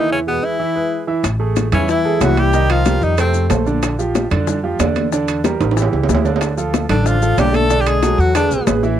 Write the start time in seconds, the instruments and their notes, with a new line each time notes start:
Already playing: upright bass E2, trombone D#3, grand piano E3 E4 E5, tenor saxophone D#4
0.11 trombone C#3, tenor saxophone C#4
0.27 trombone B2, grand piano G#3 G#4 B4, tenor saxophone B3
0.43 trombone E3, tenor saxophone E4
0.59 grand piano E3 E4 E5
0.75 grand piano G#3 G#4 B4
1.07 grand piano E3 E4 E5
1.23 upright bass A1, high bongo, high conga, high timbale, maracas
1.40 grand piano A3 G#4 A4, high conga
1.56 high bongo, high conga, high timbale, low timbale, maracas
1.72 upright bass E2, trombone C#3, grand piano E3 E4 E5, tenor saxophone C#4, high conga, low conga, high timbale, maracas
1.89 trombone E3, tenor saxophone E4, high bongo, high conga, maracas
2.05 grand piano G#3 G#4 A4, high conga
2.21 upright bass C2, grand piano E3 E4 E5, trombone F#3, tenor saxophone F#4, high bongo, low bongo, high conga, high timbale, low timbale, maracas
2.37 trombone G3, tenor saxophone G4, high conga, high timbale, maracas
2.53 grand piano D#3 D#4 D#5, high bongo, high conga, maracas
2.70 trombone F3, tenor saxophone F4, high bongo, high conga, high timbale
2.85 grand piano G3 G4 A#4, high bongo, high conga, high timbale, low timbale, maracas
3.01 upright bass F2, trombone D#3, tenor saxophone D#4, maracas
3.18 trombone C3, grand piano A3 A4 C5, tenor saxophone C4, high bongo, high conga, high timbale, maracas
3.34 high bongo, high conga, maracas
3.50 upright bass A#1, grand piano A3 A4 C5, high bongo, low bongo, high conga, high timbale, low timbale, maracas
3.67 grand piano D3 D4 D5, high bongo, high conga, maracas
3.83 high bongo, high conga, high timbale, maracas
3.99 grand piano F3 F4 G4, high conga, maracas
4.15 high bongo, high conga, high timbale, low timbale, maracas
4.31 upright bass F2, grand piano D3 D4 D5, high conga, low conga, high timbale, maracas
4.47 high bongo, high conga, low conga, maracas
4.64 grand piano F3 F4 G4, high conga
4.79 upright bass E2, grand piano D3 D4 D5, high bongo, low bongo, high conga, high timbale, low timbale, maracas
4.96 high conga, high timbale, maracas
5.12 grand piano D3 D4 D5, high bongo, high conga, maracas
5.28 high bongo, high conga, high timbale, maracas
5.44 grand piano G3 G4 A#4, high bongo, high conga, high timbale, low timbale, maracas
5.60 upright bass A1, high timbale, maracas
5.71 high timbale
5.77 grand piano E3 E4 G4, high bongo, high conga, maracas
5.82 low timbale
5.92 upright bass C#2, high bongo, high conga, low timbale
6.03 low timbale
6.09 upright bass D2, grand piano E3 E4 G4, high bongo, low bongo, high conga, maracas
6.15 low timbale
6.25 grand piano D3 D4 D5, high bongo, high conga, low timbale, maracas
6.36 low timbale
6.41 high bongo, high conga, high timbale, maracas
6.57 grand piano F3 F4 A4, high conga, maracas
6.74 high bongo, high conga, high timbale, low timbale, maracas
6.89 upright bass A1, trombone D3, grand piano D3 D4 D5, tenor saxophone D4, high conga, low conga, high timbale, maracas
7.06 trombone F3, tenor saxophone F4, high bongo, high conga, maracas
7.22 grand piano F3 F4 A4, high conga, maracas
7.38 upright bass B1, grand piano D3 D4 D5, trombone G3, tenor saxophone G4, high bongo, low bongo, high conga, high timbale, low timbale, maracas
7.54 trombone A3, tenor saxophone A4, high conga, high timbale, maracas
7.70 grand piano D3 D4 D5, high bongo, maracas
7.79 trombone G3, tenor saxophone G4
7.86 trombone G#3, tenor saxophone G#4, high bongo, high conga, high timbale, maracas
8.03 grand piano F#3 F#4 A4, high bongo, high conga, high timbale, low timbale, maracas
8.18 upright bass E2, trombone F#3, tenor saxophone F#4, maracas
8.35 trombone D3, grand piano G#3 G#4 B4, tenor saxophone D4, high bongo, high conga, high timbale, maracas
8.51 upright bass B1, high bongo, high conga, maracas
8.67 upright bass A1, grand piano G#3 G#4 B4, high bongo, low bongo, high conga, high timbale, low timbale, maracas
8.83 grand piano E3 E4 E5, high bongo, high conga, maracas